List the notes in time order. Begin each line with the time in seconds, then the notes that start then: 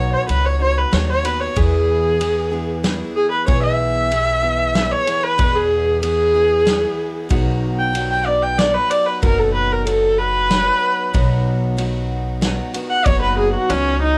Already playing: B1 B2 F#3 B3 D#4 F#4 C#5
0.13 C#5
0.27 C#2 F#3 B3 D#4 F#4 B4, ride
0.45 C#5
0.59 B3 D#4 F#4 C#5
0.77 B4
0.91 D#2 F#3 B3 D#4 F#4 C#5, snare, ride
1.10 C#5
1.23 B3 D#4 F#4 B4, ride
1.41 C#5
1.55 E2 B2 E3 B3 E4 G#4, kick, ride
2.19 E3 B3 E4 G#4, ride
2.51 E3 B3 E4 G#4
2.83 E3 B3 E4 G#4, snare, ride
3.16 G#4
3.32 B4
3.47 B1 E2 B2 E3 B3 E4 G#4 C#5, kick, ride
3.63 E5
4.11 E3 B3 E4 G#4, ride
4.42 E3 B3 E4 G#4
4.75 E3 B3 E4 G#4, snare, ride
4.92 C#5
5.07 E3 B3 E4 G#4, ride
5.24 B4
5.38 E2 B2 E3 B3 E4 G#4, kick, ride
5.56 G#4
6.02 E3 B3 E4 G#4, ride
6.34 E3 B3 E4 G#4
6.65 E3 B3 E4 G#4, snare, ride
7.29 B1 B2 F#3 B3 D#4 F#4, kick, ride
7.79 G5
7.93 F#3 B3 D#4 F#4, ride
8.11 G5
8.26 B3 D#4 F#4 D5
8.43 G5
8.58 F#3 B3 D#4 F#4 D5, snare, ride
8.74 B4
8.90 D5, ride
9.06 B4
9.22 F#1 B2 F#3 B3 D#4 F#4 A#4, kick, ride
9.39 A4
9.55 B4
9.72 A#4
9.85 F#3 B3 D#4 F#4 A4, ride
10.19 B4
10.50 F#3 B3 D#4 F#4, snare, ride
11.13 B1 B2 F#3 B3 D#4 F#4, kick, ride
11.77 F#3 B3 D#4 F#4, ride
12.41 F#3 B3 D#4 F#4, snare, ride
12.74 B3 D#4 F#4, ride
12.90 F#5
13.05 F#1 B2 F#3 B3 D#4 F#4 C#5, kick, ride
13.22 B4
13.39 G#4
13.54 F#4
13.70 C#2 F#3 B3 C#4 D#4 F#4, ride
14.03 D#4